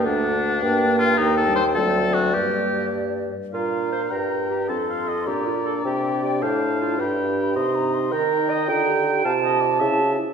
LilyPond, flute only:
\new Staff \with { instrumentName = "Flute" } { \time 6/8 \key g \minor \tempo 4. = 105 fis''4. g''4. | g''4. d''4. | d''2~ d''8 r8 | \key bes \major bes''2. |
c'''4. bes''4. | g''4. a''4. | b''4. c'''8 bes''8 c'''8 | \key ees \lydian bes''4. bes''4. |
a''4. a''4 r8 | }